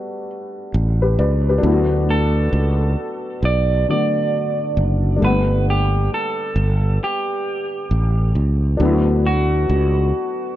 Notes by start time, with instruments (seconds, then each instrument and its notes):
Already playing: upright piano G3 A3 B3 D4 F#4
0.74 fretless electric bass A1
1.02 upright piano G4 B4
1.19 fretless electric bass C#2, upright piano B4 D5
1.49 upright piano G4 B4
1.58 upright piano F#3 A3 D4
1.63 fretless electric bass D2, upright piano B3 E4
1.72 upright piano F#4
2.10 clean electric guitar A4
2.53 fretless electric bass C#2
3.43 fretless electric bass B1, clean electric guitar D5
3.88 upright piano D3 F#3 A3 B3 F#4, clean electric guitar D5
4.77 fretless electric bass F#1
5.16 upright piano G3 A3 D4
5.22 fretless electric bass G1, upright piano A#3 F#5, clean electric guitar B4
5.28 upright piano B3
5.70 clean electric guitar G4
6.14 clean electric guitar A4
6.56 fretless electric bass G1
7.04 clean electric guitar G4
7.91 fretless electric bass A1
8.35 fretless electric bass C#2
8.77 fretless electric bass D2, upright piano F#3 A3 D4
8.83 upright piano B3 E4
8.91 upright piano F#4
9.26 clean electric guitar F#4
9.70 fretless electric bass C#2